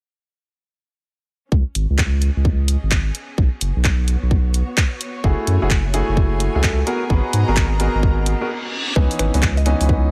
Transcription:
1.52 C#2, kick
1.75 G#1, closed hi-hat
1.90 C#2
1.98 kick, clap
2.08 G#4
2.22 closed hi-hat
2.26 D#5
2.37 C#2
2.45 kick
2.68 closed hi-hat
2.83 G#1
2.91 kick, clap
3.15 B3, closed hi-hat
3.38 B1, kick
3.44 F#4
3.61 F#1, closed hi-hat
3.76 B1
3.84 kick, clap
4.08 closed hi-hat
4.23 B1
4.31 kick
4.54 closed hi-hat
4.77 kick, clap
5.01 closed hi-hat
5.24 F#1 A3 E4 F#4 G#4, kick
5.46 F#2 G#5, closed hi-hat
5.62 F#1 A3 E4 F#4 G#4
5.70 kick, clap
5.94 A3 E4 F#4 G#4, closed hi-hat
6.09 F#1
6.17 kick
6.40 closed hi-hat
6.55 C#2 A3 E4 F#4 G#4
6.64 kick, clap
6.87 B3 F#4 G#4 A#4, closed hi-hat
7.03 A#5
7.10 G#1 B3 F#4 G#4 B4 D#5, kick
7.33 G#2, closed hi-hat
7.48 G#1 B3 F#4 G#4 A#4
7.57 kick, clap
7.80 B3 F#4 G#4 A#4, closed hi-hat
7.95 G#1
8.03 kick, reverse cymbal
8.26 closed hi-hat
8.41 B3 F#4 G#4 A#4
8.96 C#2 E3 B3 C#4 D#4 B4, kick
9.11 closed hi-hat
9.19 G#1 B4, finger snap, closed hi-hat
9.34 C#2 E3 B3 C#4 D#4, closed hi-hat
9.43 kick, clap
9.57 D#5, closed hi-hat
9.66 E3 B3 C#4 D#4, finger snap, closed hi-hat
9.81 C#2, closed hi-hat
9.89 B4, kick

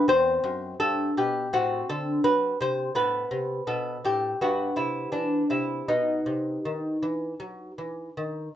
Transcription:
0.08 E2 C4 C5
0.44 F#2
0.80 G2 A4
1.17 B2 G4
1.53 A2 C4 F#4
1.89 D3 A4
2.24 F#3 B4
2.61 C3 C5
2.95 A2 B3 B4
3.31 C3
3.67 B2 A4
4.05 A2 G4
4.41 G2 B3 F#4
4.76 C3 E4
5.12 E3 D4
5.50 C3 E4
5.88 B2 B3 D#4
6.26 C3
6.65 D#3
7.03 E3
7.40 F#3
7.78 E3
8.17 D#3

